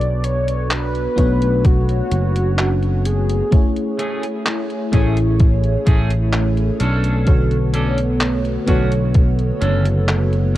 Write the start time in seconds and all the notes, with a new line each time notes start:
Already playing: B1 B3 D4 F#4 A4 B4 D5
0.01 closed hi-hat
0.24 C#5, closed hi-hat
0.48 closed hi-hat
0.71 B4, clap, closed hi-hat
0.95 closed hi-hat
1.16 B1 A3 B3 D4 F#4 C#5, kick, closed hi-hat
1.42 closed hi-hat
1.65 F#4, kick, closed hi-hat
1.89 closed hi-hat
2.12 F#1, closed hi-hat
2.36 closed hi-hat
2.58 clap, closed hi-hat
2.83 closed hi-hat
3.05 G#4, closed hi-hat
3.29 closed hi-hat
3.51 A3 C#4 E4 G#4 C#5, kick, closed hi-hat
3.76 closed hi-hat
3.99 A3 C#4 G#4, closed hi-hat
4.23 closed hi-hat
4.46 clap, closed hi-hat
4.70 closed hi-hat
4.92 A1 A3 C#4 E4 G#4 C#5, kick, closed hi-hat
5.17 closed hi-hat
5.39 kick, closed hi-hat
5.63 closed hi-hat
5.86 A1 A3 C#4 G#4, kick, closed hi-hat
6.10 closed hi-hat
6.33 clap, closed hi-hat
6.57 closed hi-hat
6.80 B1 B3 C#4 D4 A4, closed hi-hat
7.04 closed hi-hat
7.25 D3 B3 F#4 A4 C#5, kick, closed hi-hat
7.51 closed hi-hat
7.74 C#4 D4 A4, closed hi-hat
7.98 closed hi-hat
8.21 clap, closed hi-hat
8.45 closed hi-hat
8.66 B1 D3 B3 C#4 D4 F#4 A4 C#5, kick, closed hi-hat
8.92 closed hi-hat
9.14 kick, closed hi-hat
9.39 closed hi-hat
9.61 F#1 C#4 D4 A4, closed hi-hat
9.86 closed hi-hat
10.09 clap, closed hi-hat
10.33 closed hi-hat